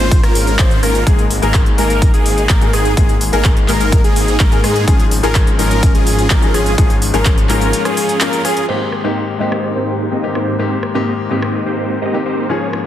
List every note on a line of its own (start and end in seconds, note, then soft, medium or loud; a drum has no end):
0.00 0.21 G#1 loud
0.00 0.20 G#3 loud
0.00 0.20 A#3 medium
0.00 0.20 C#4 medium
0.00 0.20 F4 medium
0.00 0.20 C5 loud
0.11 kick loud
0.11 closed hi-hat medium
0.23 0.57 G#1 loud
0.23 0.56 G#3 medium
0.23 0.56 A#3 medium
0.23 0.56 C#4 medium
0.23 0.56 F4 medium
0.23 0.56 A#4 medium
0.23 cross-stick medium
0.23 closed hi-hat soft
0.35 open hi-hat loud
0.47 closed hi-hat soft
0.59 0.80 G#1 loud
0.59 0.80 G#3 medium
0.59 0.80 A#3 medium
0.59 0.80 C#4 medium
0.59 0.80 F4 medium
0.59 0.80 C5 loud
0.59 kick loud
0.59 clap loud
0.59 closed hi-hat medium
0.71 closed hi-hat soft
0.83 1.04 G#1 loud
0.83 1.04 G#3 loud
0.83 1.04 A#3 medium
0.83 1.04 C#4 medium
0.83 1.04 F4 medium
0.83 1.04 A#4 loud
0.83 cross-stick medium
0.83 open hi-hat medium
0.95 closed hi-hat soft
1.06 1.40 G#1 loud
1.06 1.39 G#2 medium
1.06 1.39 D#3 medium
1.06 1.40 G#3 medium
1.06 1.24 A#3 medium
1.06 1.40 A#3 medium
1.06 1.24 D#4 medium
1.06 1.24 G#4 medium
1.06 1.40 G#4 loud
1.06 kick loud
1.06 closed hi-hat medium
1.19 closed hi-hat soft
1.31 open hi-hat loud
1.42 1.76 G#1 loud
1.42 1.75 G#2 loud
1.42 1.75 D#3 medium
1.42 1.75 G#3 medium
1.42 1.60 A#3 loud
1.42 1.75 A#3 medium
1.42 1.60 D#4 medium
1.42 1.76 G#4 loud
1.42 1.60 A#4 loud
1.42 closed hi-hat soft
1.54 kick loud
1.54 clap loud
1.54 closed hi-hat medium
1.66 closed hi-hat soft
1.77 2.11 G#1 loud
1.77 2.58 G#2 medium
1.77 2.59 D#3 medium
1.77 2.59 G#3 medium
1.77 2.11 A#3 loud
1.77 2.59 A#3 medium
1.77 2.11 D#4 medium
1.77 2.60 G#4 loud
1.77 2.11 A#4 loud
1.77 open hi-hat medium
1.90 closed hi-hat soft
2.02 kick loud
2.02 closed hi-hat medium
2.14 2.47 G#1 loud
2.14 2.47 A#3 medium
2.14 2.47 D#4 medium
2.14 2.47 G#4 medium
2.14 closed hi-hat soft
2.26 open hi-hat loud
2.38 closed hi-hat soft
2.49 2.71 G#1 loud
2.49 2.70 A#3 medium
2.49 2.70 D#4 medium
2.49 2.70 A#4 loud
2.49 kick loud
2.49 clap loud
2.49 closed hi-hat medium
2.61 2.94 G#2 medium
2.61 2.94 D#3 medium
2.61 2.94 G#3 medium
2.61 2.94 A#3 medium
2.61 2.95 G#4 medium
2.61 closed hi-hat soft
2.73 2.95 G#1 loud
2.73 2.94 A#3 loud
2.73 2.94 D#4 medium
2.73 2.94 G#4 loud
2.73 cross-stick medium
2.73 open hi-hat medium
2.85 closed hi-hat soft
2.97 3.30 G#1 loud
2.97 3.30 G#2 medium
2.97 3.30 D#3 medium
2.97 3.30 G#3 medium
2.97 3.15 A#3 medium
2.97 3.30 A#3 medium
2.97 3.15 D#4 medium
2.97 3.15 G#4 medium
2.97 3.30 G#4 loud
2.97 kick loud
2.97 closed hi-hat medium
3.09 closed hi-hat soft
3.21 open hi-hat loud
3.32 3.66 G#1 loud
3.32 3.65 G#2 loud
3.32 3.66 D#3 medium
3.32 3.66 G#3 medium
3.32 3.50 A#3 loud
3.32 3.66 A#3 medium
3.32 3.50 D#4 medium
3.32 3.66 G#4 loud
3.32 3.50 A#4 loud
3.32 closed hi-hat soft
3.45 kick loud
3.45 clap loud
3.45 closed hi-hat medium
3.57 closed hi-hat soft
3.67 4.02 G#1 loud
3.67 4.49 G#2 medium
3.67 4.49 D#3 medium
3.67 4.50 G#3 medium
3.67 4.01 A#3 loud
3.67 4.50 A#3 medium
3.67 4.01 D#4 medium
3.67 4.50 G#4 loud
3.67 4.01 A#4 loud
3.67 clap soft
3.67 open hi-hat medium
3.80 closed hi-hat soft
3.92 kick loud
3.92 closed hi-hat medium
4.04 4.38 G#1 loud
4.04 4.37 A#3 medium
4.04 4.37 D#4 medium
4.04 4.37 G#4 medium
4.04 closed hi-hat soft
4.16 open hi-hat loud
4.28 closed hi-hat soft
4.40 4.61 G#1 loud
4.40 4.61 A#3 medium
4.40 4.61 D#4 medium
4.40 4.61 A#4 loud
4.40 kick loud
4.40 clap loud
4.40 closed hi-hat loud
4.51 4.84 G#2 medium
4.51 4.85 D#3 medium
4.51 4.85 G#3 medium
4.51 4.85 A#3 medium
4.51 4.85 G#4 medium
4.51 closed hi-hat soft
4.64 4.85 G#2 loud
4.64 4.85 A#3 loud
4.64 4.85 D#4 medium
4.64 4.85 G#4 loud
4.64 cross-stick medium
4.64 open hi-hat medium
4.76 closed hi-hat soft
4.87 5.21 G#1 loud
4.87 5.20 G#2 medium
4.87 5.20 F3 medium
4.87 5.20 G#3 medium
4.87 5.05 C#4 medium
4.87 5.21 C#4 medium
4.87 5.05 F4 medium
4.87 5.05 G#4 medium
4.87 5.21 G#4 loud
4.87 kick loud
4.87 closed hi-hat medium
5.00 closed hi-hat soft
5.11 open hi-hat loud
5.23 5.57 G#1 loud
5.23 5.56 G#2 loud
5.23 5.56 F3 medium
5.23 5.56 G#3 medium
5.23 5.41 C#4 loud
5.23 5.56 C#4 medium
5.23 5.41 F4 medium
5.23 5.57 G#4 loud
5.23 5.41 A#4 loud
5.23 closed hi-hat soft
5.35 kick loud
5.35 clap loud
5.35 closed hi-hat loud
5.47 closed hi-hat soft
5.58 5.92 G#1 loud
5.58 6.39 G#2 medium
5.58 6.40 F3 medium
5.58 6.40 G#3 medium
5.58 5.92 C#4 loud
5.58 6.40 C#4 medium
5.58 5.92 F4 medium
5.58 6.41 G#4 loud
5.58 5.92 A#4 loud
5.58 open hi-hat medium
5.71 closed hi-hat soft
5.83 kick loud
5.83 closed hi-hat loud
5.95 6.28 G#1 loud
5.95 6.28 C#4 medium
5.95 6.28 F4 medium
5.95 6.28 G#4 medium
5.95 closed hi-hat soft
6.07 open hi-hat loud
6.19 closed hi-hat soft
6.30 6.52 G#1 loud
6.30 6.51 C#4 medium
6.30 6.51 F4 medium
6.30 6.51 A#4 loud
6.30 kick loud
6.30 clap loud
6.30 closed hi-hat loud
6.42 6.75 G#2 medium
6.42 6.75 F3 medium
6.42 6.75 G#3 medium
6.42 6.75 C#4 medium
6.42 6.76 G#4 medium
6.42 closed hi-hat soft
6.54 6.76 G#1 loud
6.54 6.75 C#4 loud
6.54 6.75 F4 medium
6.54 6.75 G#4 loud
6.54 cross-stick medium
6.54 open hi-hat medium
6.66 closed hi-hat soft
6.78 7.11 G#1 loud
6.78 7.11 G#2 medium
6.78 7.11 F3 medium
6.78 7.11 G#3 medium
6.78 6.96 C#4 medium
6.78 7.11 C#4 medium
6.78 6.96 F4 medium
6.78 6.96 G#4 medium
6.78 7.11 G#4 loud
6.78 kick loud
6.78 closed hi-hat loud
6.90 closed hi-hat soft
7.02 open hi-hat loud
7.13 7.47 G#1 loud
7.13 7.46 G#2 loud
7.13 7.47 F3 medium
7.13 7.47 G#3 medium
7.13 7.31 C#4 loud
7.13 7.47 C#4 medium
7.13 7.31 F4 medium
7.13 7.47 G#4 loud
7.13 7.31 A#4 loud
7.13 closed hi-hat soft
7.26 kick loud
7.26 clap loud
7.26 closed hi-hat loud
7.38 closed hi-hat soft
7.48 7.73 G#1 loud
7.48 8.30 G#2 medium
7.48 8.30 F3 medium
7.48 8.30 G#3 medium
7.48 7.82 C#4 loud
7.48 8.31 C#4 medium
7.48 7.82 F4 medium
7.48 8.31 G#4 loud
7.48 7.82 A#4 loud
7.48 clap soft
7.48 open hi-hat medium
7.61 closed hi-hat soft
7.73 closed hi-hat loud
7.85 8.18 C#4 medium
7.85 8.18 F4 medium
7.85 8.18 G#4 medium
7.85 cross-stick medium
7.85 closed hi-hat soft
7.97 open hi-hat loud
8.09 closed hi-hat soft
8.21 8.42 C#4 medium
8.21 8.42 F4 medium
8.21 8.42 A#4 loud
8.21 clap loud
8.21 closed hi-hat loud
8.33 closed hi-hat soft
8.45 8.66 C#4 loud
8.45 8.66 F4 medium
8.45 8.66 G#4 loud
8.45 cross-stick medium
8.45 open hi-hat medium
8.57 closed hi-hat soft
8.68 9.01 G#2 medium
8.68 8.86 G#2 medium
8.68 9.01 D#3 medium
8.68 8.86 A#3 medium
8.68 9.01 A#3 medium
8.68 8.86 C4 medium
8.68 9.02 C4 medium
8.68 8.86 D#4 medium
8.68 8.86 G4 medium
8.68 9.02 G4 medium
8.68 8.86 C5 medium
8.68 crash medium
8.92 cross-stick medium
9.04 9.37 G#2 medium
9.04 9.22 G#2 medium
9.04 9.37 D#3 medium
9.04 9.22 A#3 medium
9.04 9.37 A#3 medium
9.04 9.22 C4 medium
9.04 9.37 C4 medium
9.04 9.22 D#4 medium
9.04 9.22 G4 medium
9.04 9.37 G4 loud
9.04 9.22 D#5 loud
9.39 10.20 G#2 medium
9.39 9.73 G#2 medium
9.39 10.21 D#3 medium
9.39 9.73 A#3 medium
9.39 10.21 A#3 medium
9.39 9.73 C4 medium
9.39 10.21 C4 medium
9.39 9.73 D#4 medium
9.39 9.73 G4 medium
9.39 10.22 G4 medium
9.39 9.73 D#5 loud
9.52 cross-stick medium
9.76 10.09 G#2 medium
9.76 10.09 A#3 medium
9.76 10.09 C4 medium
9.76 10.09 D#4 medium
9.76 10.09 G4 medium
9.76 10.09 C5 medium
10.11 10.32 G#2 medium
10.11 10.32 A#3 medium
10.11 10.32 C4 medium
10.11 10.32 D#4 medium
10.11 10.32 G4 medium
10.11 10.32 D#5 loud
10.23 10.56 G#2 medium
10.23 10.56 D#3 medium
10.23 10.56 A#3 medium
10.23 10.56 C4 medium
10.23 10.56 G4 medium
10.35 10.56 G#2 medium
10.35 10.56 A#3 medium
10.35 10.56 C4 medium
10.35 10.56 D#4 medium
10.35 10.56 G4 medium
10.35 10.56 C5 loud
10.35 cross-stick medium
10.58 10.92 G#2 medium
10.58 10.77 G#2 medium
10.58 10.92 D#3 medium
10.58 10.77 A#3 medium
10.58 10.92 A#3 medium
10.58 10.77 C4 medium
10.58 10.92 C4 medium
10.58 10.77 D#4 medium
10.58 10.77 G4 medium
10.58 10.92 G4 medium
10.58 10.77 C5 medium
10.83 cross-stick medium
10.94 11.27 G#2 medium
10.94 11.12 G#2 medium
10.94 11.27 D#3 medium
10.94 11.28 A#3 medium
10.94 11.12 A#3 medium
10.94 11.12 C4 medium
10.94 11.28 C4 medium
10.94 11.12 D#4 medium
10.94 11.12 G4 medium
10.94 11.28 G4 loud
10.94 11.12 D#5 loud
11.29 12.11 G#2 medium
11.29 11.63 G#2 loud
11.29 12.11 D#3 medium
11.29 11.63 A#3 medium
11.29 12.11 A#3 medium
11.29 11.63 C4 medium
11.29 12.12 C4 medium
11.29 11.63 D#4 medium
11.29 11.63 G4 medium
11.29 12.12 G4 medium
11.29 11.63 D#5 loud
11.42 cross-stick medium
11.66 11.99 G#2 medium
11.66 11.99 A#3 medium
11.66 11.99 C4 medium
11.66 11.99 D#4 medium
11.66 11.99 G4 medium
11.66 11.99 C5 medium
12.02 12.23 G#2 medium
12.02 12.23 A#3 medium
12.02 12.23 C4 medium
12.02 12.23 D#4 medium
12.02 12.23 G4 medium
12.02 12.23 D#5 loud
12.13 12.46 G#2 medium
12.13 12.47 D#3 medium
12.13 12.47 A#3 medium
12.13 12.47 C4 medium
12.13 12.47 G4 medium
12.26 12.47 G#2 medium
12.26 12.47 A#3 medium
12.26 12.47 C4 medium
12.26 12.47 D#4 medium
12.26 12.47 G4 medium
12.26 12.47 C5 loud
12.49 12.82 G#2 medium
12.49 12.67 G#2 medium
12.49 12.82 F3 medium
12.49 12.67 A#3 medium
12.49 12.82 A#3 medium
12.49 12.67 C#4 medium
12.49 12.83 C#4 medium
12.49 12.67 F4 medium
12.49 12.67 G#4 medium
12.49 12.83 G#4 medium
12.49 12.67 C#5 medium
12.73 cross-stick medium